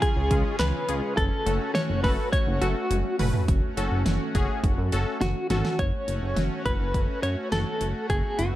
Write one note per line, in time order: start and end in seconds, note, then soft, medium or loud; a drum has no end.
0.00 1.15 C#3 medium
0.00 3.44 C#4 medium
0.00 1.15 F4 medium
0.00 1.15 G#4 medium
0.00 0.59 G#4 medium
0.00 kick loud
0.00 closed hi-hat medium
0.16 0.29 C#2 medium
0.31 0.44 C#2 loud
0.31 0.56 G#3 medium
0.31 0.56 C#4 medium
0.31 0.56 F4 medium
0.31 0.56 G#4 medium
0.31 kick loud
0.31 closed hi-hat medium
0.59 0.73 C#2 loud
0.59 1.17 B4 loud
0.59 snare loud
0.59 clap loud
0.59 closed hi-hat medium
0.88 1.01 C#2 loud
0.88 1.14 G#3 medium
0.88 1.14 C#4 medium
0.88 1.14 F4 medium
0.88 1.14 G#4 medium
0.88 closed hi-hat medium
1.17 1.30 F#1 loud
1.17 3.46 A3 medium
1.17 3.46 F#4 loud
1.17 1.74 A4 loud
1.17 kick loud
1.17 closed hi-hat medium
1.46 1.59 F#1 loud
1.46 1.71 A3 medium
1.46 1.71 C#4 medium
1.46 1.71 F#4 medium
1.46 1.71 A4 medium
1.46 closed hi-hat medium
1.75 2.02 C#5 loud
1.75 snare loud
1.75 closed hi-hat medium
1.90 2.02 F#1 loud
2.04 2.17 F#1 loud
2.04 2.29 A3 medium
2.04 2.29 C#4 medium
2.04 2.29 F#4 medium
2.04 2.29 A4 medium
2.04 2.32 B4 loud
2.04 kick medium
2.04 open hi-hat medium
2.33 2.62 C#5 loud
2.33 kick loud
2.33 closed hi-hat medium
2.47 2.60 F#1 loud
2.62 2.75 F#1 loud
2.62 2.87 A3 medium
2.62 2.87 C#4 medium
2.62 3.15 F#4 medium
2.62 2.87 F#4 medium
2.62 2.87 A4 medium
2.62 closed hi-hat medium
2.91 3.03 F#1 loud
2.91 closed hi-hat medium
2.91 high tom medium
3.19 3.32 F#1 loud
3.19 3.44 A3 medium
3.19 3.44 C#4 medium
3.19 3.44 F#4 medium
3.19 3.44 B4 medium
3.19 mid tom medium
3.19 open hi-hat medium
3.34 floor tom loud
3.48 3.61 F#1 loud
3.48 5.77 A3 medium
3.48 5.77 C#4 medium
3.48 5.77 F#4 medium
3.48 kick loud
3.48 closed hi-hat medium
3.77 3.90 F#1 loud
3.77 4.02 C#4 medium
3.77 4.02 F#4 medium
3.77 4.02 A4 loud
3.77 closed hi-hat medium
3.92 4.04 F#1 loud
4.06 4.19 F#1 loud
4.06 snare loud
4.06 closed hi-hat medium
4.35 4.48 F#1 medium
4.35 4.60 C#4 medium
4.35 4.60 F#4 medium
4.35 4.60 G#4 loud
4.35 kick medium
4.35 closed hi-hat medium
4.64 4.76 F#1 loud
4.64 kick medium
4.64 closed hi-hat medium
4.78 4.91 F#2 medium
4.92 5.05 F#1 loud
4.92 5.18 C#4 medium
4.92 5.18 F#4 medium
4.92 5.18 A4 loud
4.92 closed hi-hat medium
5.21 5.34 F#1 loud
5.21 5.48 F#4 medium
5.21 snare medium
5.21 closed hi-hat medium
5.50 5.63 G#1 medium
5.50 5.75 C#4 medium
5.50 5.75 F#4 medium
5.50 5.80 F#4 medium
5.50 5.75 A4 medium
5.50 snare medium
5.50 closed hi-hat medium
5.65 snare medium
5.79 5.92 F#1 loud
5.79 8.56 A3 medium
5.79 8.08 C#4 medium
5.79 8.56 F#4 medium
5.79 6.65 C#5 loud
5.79 kick loud
5.79 closed hi-hat medium
6.08 6.21 F#1 loud
6.08 closed hi-hat medium
6.22 6.35 F#1 medium
6.36 6.49 F#1 loud
6.36 snare loud
6.36 closed hi-hat medium
6.66 6.78 F#1 loud
6.66 7.23 B4 loud
6.66 kick medium
6.66 closed hi-hat medium
6.80 6.93 F#1 loud
6.94 7.07 F#1 loud
6.94 kick medium
6.94 closed hi-hat medium
7.23 7.36 F#2 loud
7.23 7.50 C#5 medium
7.23 closed hi-hat medium
7.52 7.65 F#1 loud
7.52 8.09 A4 medium
7.52 snare loud
7.52 closed hi-hat medium
7.81 7.94 F#1 medium
7.81 closed hi-hat medium
8.10 8.23 F#1 loud
8.10 8.56 B3 medium
8.10 8.40 G#4 medium
8.10 kick loud
8.10 closed hi-hat medium
8.39 8.52 F#1 loud
8.39 8.56 F#4 medium
8.39 closed hi-hat medium